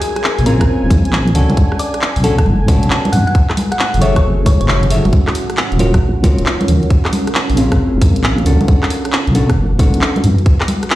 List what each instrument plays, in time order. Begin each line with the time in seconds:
Already playing: ambient pad D#4 G#4 A#4 C#5, analog synth pad G#5
0.02 synth pluck G#4, open hi-hat
0.16 synth pluck G#4, cross-stick, closed hi-hat
0.24 clap
0.31 ambient pad F5
0.39 wobble bass A#1, open hi-hat
0.46 clean electric guitar C4 C#4 F4 G#4, synth pluck A#4, open hi-hat
0.61 synth pluck A#4, kick, cross-stick, closed hi-hat
0.83 wobble bass F1
0.90 wobble bass F2, kick, open hi-hat, high conga
1.05 wobble bass A#1, closed hi-hat
1.13 clap
1.27 closed hi-hat
1.35 wobble bass C#2, clean electric guitar C#4 D4 F#4 A4, open hi-hat
1.50 closed hi-hat, high conga
1.57 ambient pad D3, kick, closed hi-hat
1.72 ambient pad A3, cross-stick
1.79 synth pluck D5, open hi-hat
1.94 cross-stick, closed hi-hat
2.02 clap
2.12 ambient pad B4
2.16 wobble bass B1, open hi-hat
2.22 clean electric guitar C#4 D4 F#4 A4, ambient pad F#4, synth pluck A4, open hi-hat
2.38 synth pluck A4, kick, cross-stick, closed hi-hat
2.46 wobble bass F#1, high conga
2.68 wobble bass A1, clean electric guitar C#4 D4 F#4 A4, kick, open hi-hat, high conga
2.83 wobble bass B1, closed hi-hat
2.90 clap
3.05 closed hi-hat, high conga
3.12 wobble bass F#2, ambient pad E4, synth pluck F#5, open hi-hat
3.27 synth pluck F#5, closed hi-hat
3.35 kick, closed hi-hat
3.43 ambient pad C#4
3.50 cross-stick, clap
3.57 open hi-hat, high conga
3.72 synth pluck F#5, cross-stick, closed hi-hat
3.79 clap
3.94 wobble bass F#1, open hi-hat
4.01 clean electric guitar G#4 A4 C#5 E5, synth pluck C#5, open hi-hat
4.16 synth pluck C#5, kick, cross-stick, closed hi-hat
4.46 wobble bass C#2, synth pluck C#5, kick, open hi-hat, high conga
4.61 wobble bass F#1, synth pluck C#5, closed hi-hat
4.68 synth pluck C#5, clap
4.83 closed hi-hat
4.90 clean electric guitar G#4 A4 C#5 E5, open hi-hat
5.05 wobble bass F#1, closed hi-hat, high conga
5.13 ambient pad D#4, kick, closed hi-hat
5.27 ambient pad A#4, cross-stick, clap
5.35 open hi-hat
5.50 cross-stick, closed hi-hat
5.57 clap
5.72 wobble bass D#1, closed hi-hat
5.79 clean electric guitar F4 F#4 A#4 C#5, open hi-hat
5.94 kick, cross-stick, closed hi-hat
6.02 wobble bass A#1
6.23 wobble bass C#2, clean electric guitar F4 F#4 A#4 C#5, kick, open hi-hat, high conga
6.38 wobble bass D#1, closed hi-hat
6.46 clap
6.61 closed hi-hat, high conga
6.68 wobble bass D#2, open hi-hat
6.83 closed hi-hat
6.90 ambient pad F4, kick, closed hi-hat
7.04 ambient pad G#5, cross-stick, clap
7.13 open hi-hat, high conga
7.27 cross-stick, closed hi-hat
7.35 clap
7.50 wobble bass A#1, open hi-hat
7.57 clean electric guitar C4 C#4 F4 G#4, open hi-hat
7.72 kick, cross-stick, closed hi-hat
7.94 wobble bass F1
8.02 wobble bass F2, kick, open hi-hat, high conga
8.16 wobble bass A#1, closed hi-hat
8.24 clap
8.38 closed hi-hat
8.46 wobble bass C#2, clean electric guitar C#4 D4 F#4 A4, open hi-hat
8.61 closed hi-hat, high conga
8.68 ambient pad F#4, kick, closed hi-hat
8.83 cross-stick, clap
8.90 ambient pad B4, open hi-hat
9.05 cross-stick, closed hi-hat
9.11 ambient pad D6, clap
9.27 wobble bass B1, closed hi-hat
9.35 clean electric guitar C#4 D4 F#4 A4, open hi-hat
9.50 kick, cross-stick, closed hi-hat
9.57 wobble bass F#1
9.79 wobble bass A1, clean electric guitar C#4 D4 F#4 A4, kick, open hi-hat, high conga
9.94 wobble bass B1, closed hi-hat
10.01 clap
10.16 closed hi-hat, high conga
10.24 wobble bass F#2, open hi-hat
10.38 closed hi-hat
10.46 ambient pad C#4, kick, closed hi-hat
10.61 ambient pad E5, cross-stick, clap
10.68 open hi-hat, high conga
10.83 cross-stick, closed hi-hat
10.90 clap